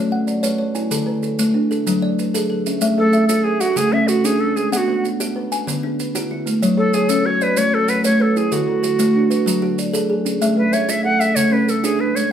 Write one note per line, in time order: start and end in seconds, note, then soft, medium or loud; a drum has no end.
0.00 0.12 F#3 medium
0.00 0.28 A3 medium
0.00 0.12 C#5 medium
0.12 0.60 F#5 medium
0.27 0.75 D5 medium
0.27 maracas medium
0.43 0.76 A3 medium
0.43 0.92 B4 medium
0.43 0.57 C#5 medium
0.43 maracas medium
0.58 1.07 C#5 medium
0.75 1.07 E4 medium
0.75 1.23 G#5 medium
0.75 maracas medium
0.91 1.23 D3 medium
0.91 1.39 A4 medium
0.91 maracas medium
1.06 1.39 D3 medium
1.06 1.55 B4 medium
1.23 1.71 A4 medium
1.23 maracas medium
1.39 1.71 A3 medium
1.39 maracas medium
1.54 1.87 D4 medium
1.71 2.03 A4 medium
1.71 maracas soft
1.86 2.03 D3 medium
1.86 2.19 F#3 medium
1.86 maracas medium
2.02 2.50 D5 medium
2.19 2.66 B4 medium
2.19 maracas medium
2.34 2.67 F#3 medium
2.34 2.83 G#4 medium
2.34 2.48 A4 medium
2.34 maracas medium
2.50 2.98 A4 medium
2.66 2.98 C#4 medium
2.66 2.97 E5 medium
2.66 maracas medium
2.81 3.14 A3 medium
2.81 3.12 E5 medium
2.81 maracas medium
2.98 3.30 A3 medium
2.98 3.27 A4 loud
2.98 3.12 E5 medium
3.13 3.61 E5 medium
3.13 maracas medium
3.28 3.61 E4 medium
3.28 3.45 A4 medium
3.28 maracas medium
3.44 3.62 G#4 loud
3.44 3.77 A4 medium
3.60 3.79 F#4 medium
3.60 3.93 F#5 medium
3.60 maracas medium
3.76 4.08 C#3 medium
3.76 3.93 A3 medium
3.76 3.94 G#4 loud
3.76 maracas medium
3.93 4.40 C#4 medium
3.93 4.09 E5 medium
4.08 4.27 F#4 medium
4.08 4.56 A4 medium
4.08 maracas medium
4.24 4.56 C#4 medium
4.24 4.72 D4 medium
4.24 4.56 E4 medium
4.24 4.42 G#4 medium
4.24 maracas medium
4.40 4.88 D4 medium
4.40 4.57 A4 medium
4.56 4.88 G#3 medium
4.56 4.72 G#4 medium
4.56 maracas medium
4.72 5.04 B3 medium
4.72 4.78 G#4 medium
4.72 5.20 F#5 medium
4.72 maracas medium
4.77 5.06 F#4 medium
4.88 5.20 B3 medium
4.88 5.03 F#5 medium
5.04 5.51 F#5 medium
5.04 maracas medium
5.20 5.52 F#4 medium
5.20 maracas medium
5.36 5.67 B4 medium
5.52 5.83 G#5 medium
5.52 maracas medium
5.67 5.99 D3 medium
5.67 5.83 B3 medium
5.67 maracas medium
5.83 6.31 D4 medium
6.00 6.47 B4 medium
6.00 maracas medium
6.15 6.47 D3 medium
6.15 6.62 E4 medium
6.15 6.47 F#4 medium
6.15 maracas medium
6.31 6.78 E4 medium
6.46 6.78 A3 medium
6.46 maracas medium
6.62 6.94 F#3 medium
6.62 6.93 C#5 medium
6.62 maracas medium
6.77 7.09 F#3 medium
6.77 6.96 A4 loud
6.77 6.92 C#5 medium
6.93 7.11 G#4 medium
6.93 7.41 C#5 medium
6.93 7.42 C#5 medium
6.93 maracas medium
7.09 7.41 C#4 medium
7.09 7.27 A4 medium
7.09 maracas medium
7.25 7.57 F#4 medium
7.25 7.44 C#5 loud
7.41 7.59 B4 loud
7.41 7.73 D5 medium
7.41 maracas soft
7.57 7.73 F#3 medium
7.57 7.89 A3 medium
7.57 7.76 C#5 loud
7.57 maracas medium
7.74 7.91 A4 loud
7.88 8.05 B4 medium
7.88 8.36 F#5 medium
7.88 maracas medium
8.04 8.36 A3 medium
8.04 8.52 B4 medium
8.04 8.36 C#5 medium
8.04 8.23 C#5 medium
8.04 maracas medium
8.20 8.39 A4 medium
8.20 8.68 B4 medium
8.36 8.68 E4 medium
8.36 8.54 G#4 medium
8.36 maracas medium
8.52 8.84 D3 medium
8.52 9.78 F#4 medium
8.52 8.82 A4 medium
8.52 maracas medium
8.68 8.99 D3 medium
8.68 8.82 A4 medium
8.83 9.30 A4 medium
8.83 9.31 A4 medium
8.83 maracas medium
8.99 9.31 A3 medium
8.99 maracas medium
9.15 9.47 D4 medium
9.30 9.62 B4 medium
9.30 maracas medium
9.46 9.62 D3 medium
9.46 9.78 F#3 medium
9.46 maracas medium
9.62 10.10 F#4 medium
9.78 10.26 D5 medium
9.78 maracas medium
9.94 10.26 F#3 medium
9.94 10.42 G#4 medium
9.94 10.25 A4 medium
9.94 maracas medium
10.10 10.57 G#4 medium
10.25 10.57 C#4 medium
10.25 maracas medium
10.42 10.73 A3 medium
10.42 10.72 E5 medium
10.42 maracas medium
10.57 10.89 A3 medium
10.57 10.75 B4 medium
10.57 10.71 E5 medium
10.73 10.91 C#5 medium
10.73 11.20 E5 medium
10.73 maracas medium
10.89 11.20 E4 medium
10.89 11.04 E5 medium
10.89 maracas medium
11.05 11.36 A4 medium
11.05 11.22 F#5 loud
11.20 11.37 E5 medium
11.20 11.52 F#5 medium
11.20 maracas medium
11.36 11.68 C#3 medium
11.36 11.52 A3 medium
11.36 11.54 C#5 loud
11.36 maracas medium
11.51 11.99 C#4 medium
11.51 11.71 B4 medium
11.67 12.15 A4 medium
11.67 11.86 A4 medium
11.67 maracas medium
11.84 12.15 C#4 medium
11.84 12.31 D4 medium
11.84 12.15 E4 medium
11.84 12.02 G#4 medium
11.84 maracas medium
11.99 12.32 D4 medium
11.99 12.17 B4 medium
12.14 12.32 G#3 medium
12.14 12.32 C#5 medium
12.14 maracas medium